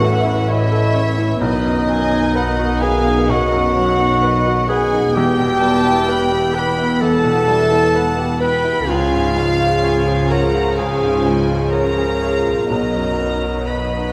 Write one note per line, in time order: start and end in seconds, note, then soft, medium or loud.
0.00 1.38 A1 soft
0.00 1.42 A1 medium
0.00 0.16 E2 soft
0.00 1.42 A2 medium
0.00 1.46 A2 medium
0.00 1.42 E3 medium
0.00 1.46 E3 medium
0.00 0.02 A3 medium
0.00 1.47 A3 medium
0.00 0.39 A3 soft
0.00 1.38 C#4 medium
0.00 0.24 E4 soft
0.00 1.46 E4 medium
0.00 0.22 F#4 loud
0.00 0.72 A4 soft
0.00 0.48 C#5 medium
0.00 1.18 C#5 soft
0.00 0.49 E5 medium
0.00 0.50 F#5 medium
0.24 0.62 E4 soft
0.24 0.95 A4 medium
0.48 1.44 E4 medium
0.48 0.86 C#5 soft
0.48 0.97 D#5 medium
0.48 1.42 E5 medium
0.48 1.46 C#6 medium
0.72 1.09 A4 soft
0.72 1.45 E5 medium
0.94 1.46 A4 soft
0.94 1.32 C#5 medium
0.94 1.43 C#5 medium
1.18 1.41 E4 soft
1.18 1.46 C#5 medium
1.41 3.24 B1 medium
1.41 5.11 B1 medium
1.41 5.10 B2 medium
1.41 3.28 B2 medium
1.41 5.15 D#3 medium
1.41 5.14 B3 medium
1.41 2.84 D#4 medium
1.41 1.88 B4 medium
1.41 2.79 D#5 medium
1.65 2.02 F#2 soft
1.65 3.53 B3 medium
1.88 2.26 F#3 soft
1.88 3.76 D#4 medium
1.88 2.35 G#5 medium
2.11 2.49 D#4 soft
2.11 2.81 F#4 medium
2.35 2.72 B4 medium
2.35 2.82 F#5 medium
2.35 4.22 B5 medium
2.58 2.96 F#4 soft
2.58 4.45 D#5 soft
2.82 3.99 F#4 medium
2.82 3.31 G#4 medium
2.82 3.19 B4 medium
2.82 3.29 F5 medium
2.82 3.29 G#5 medium
3.06 3.43 D#4 soft
3.06 4.92 B4 soft
3.29 5.11 B1 medium
3.29 5.19 B2 medium
3.29 4.68 F#4 medium
3.29 3.76 D#5 medium
3.29 4.69 F#5 medium
3.53 3.90 F#2 soft
3.53 7.44 B3 soft
3.75 4.13 F#3 soft
3.75 5.19 D#4 medium
3.75 4.21 C#5 medium
4.00 4.36 D#4 medium
4.00 4.68 F#4 soft
4.22 4.59 B4 medium
4.22 4.68 D#5 medium
4.22 6.31 B5 medium
4.46 4.83 F#4 soft
4.46 5.19 D#5 medium
4.68 5.19 F#4 soft
4.68 5.17 G#4 medium
4.68 5.06 B4 medium
4.68 5.15 F#5 medium
4.68 5.15 G#5 medium
4.92 5.15 D#4 soft
4.92 5.61 B4 soft
5.15 8.85 E1 medium
5.15 8.84 E2 medium
5.15 6.98 E2 medium
5.15 7.00 E3 medium
5.15 8.85 E3 medium
5.15 8.85 B3 medium
5.15 6.56 G4 medium
5.15 5.61 G5 medium
5.15 6.55 G5 medium
5.39 5.75 B2 soft
5.39 7.24 G3 soft
5.61 5.99 G3 medium
5.61 7.47 B4 soft
5.61 6.08 A5 medium
5.85 6.22 E4 medium
5.85 6.55 E5 medium
6.08 6.45 B4 medium
6.08 6.55 B5 medium
6.32 6.68 G4 soft
6.32 8.17 B5 medium
6.55 7.03 B4 medium
6.55 6.92 B4 soft
6.55 7.71 E5 medium
6.55 7.01 G5 medium
6.55 7.01 B5 medium
6.78 7.15 E4 soft
6.78 8.65 G4 soft
7.01 8.85 E2 medium
7.01 8.92 E3 medium
7.01 8.24 A4 loud
7.01 7.48 F#5 medium
7.01 8.42 A5 medium
7.24 7.61 B2 soft
7.24 8.93 G3 soft
7.48 7.85 G3 soft
7.48 8.93 B4 medium
7.48 7.95 E5 medium
7.72 8.09 E4 soft
7.72 8.41 E5 soft
7.95 8.32 B4 medium
7.95 8.41 F#5 medium
8.18 8.56 G4 soft
8.18 8.93 B5 medium
8.40 8.78 B4 soft
8.40 8.90 B4 medium
8.40 8.93 E5 soft
8.40 8.88 G5 medium
8.40 8.88 B5 medium
8.64 8.88 E4 soft
8.64 8.93 G4 medium
8.88 12.66 C#2 medium
8.88 10.74 C#2 medium
8.88 12.66 C#3 medium
8.88 10.77 C#3 medium
8.88 12.71 F3 medium
8.88 12.67 C#4 medium
8.88 10.32 F4 medium
8.88 10.31 F5 medium
8.88 9.35 G#5 medium
9.14 9.51 G#2 soft
9.14 11.01 C#4 soft
9.36 12.75 F3 soft
9.36 9.74 G#3 soft
9.36 9.84 F5 medium
9.61 9.98 F4 soft
9.61 10.30 G#4 soft
9.84 10.21 C#5 soft
9.84 10.31 G#5 medium
9.84 11.73 C#6 medium
10.07 10.44 G#4 soft
10.07 12.75 G#5 soft
10.30 11.49 G#4 soft
10.30 10.80 A#4 medium
10.30 10.68 C#5 soft
10.30 10.78 F#5 medium
10.30 10.78 A#5 medium
10.55 10.92 F4 soft
10.55 12.45 C#5 soft
10.78 12.67 C#2 soft
10.78 12.75 C#3 medium
10.78 11.45 G#4 medium
10.78 11.25 F5 medium
10.78 11.73 G#5 medium
11.02 11.39 G#2 soft
11.02 12.75 C#4 soft
11.26 11.64 G#3 soft
11.26 12.75 F4 soft
11.26 11.73 D#5 medium
11.50 11.88 F4 soft
11.50 12.21 G#4 soft
11.72 12.66 A#4 medium
11.72 12.12 C#5 soft
11.72 12.22 C#5 soft
11.72 12.69 A#5 medium
11.72 12.75 C#6 soft
11.98 12.36 G#4 soft
11.98 12.75 F5 soft
12.22 12.75 G#4 soft
12.22 12.61 C#5 soft
12.22 12.71 F5 soft
12.47 12.71 F4 soft
12.47 12.75 C#5 soft
12.70 14.12 B1 medium
12.70 14.12 B1 soft
12.70 14.12 B2 soft
12.70 14.12 F#3 medium
12.70 14.12 D#4 soft
12.70 13.69 A#4 medium
12.70 13.57 D#5 medium
12.70 13.67 A#5 medium
12.95 13.34 F#2 soft
12.95 14.12 F#3 soft
13.20 13.59 B3 soft
13.20 14.12 F#4 soft
13.44 13.83 F#4 soft
13.44 14.12 B4 soft
13.67 14.12 B4 medium
13.67 14.08 D#5 soft
13.67 14.12 D#5 medium
13.67 14.12 B5 soft
13.67 14.12 D#6 soft
13.93 14.12 B4 soft
13.93 14.12 F#5 soft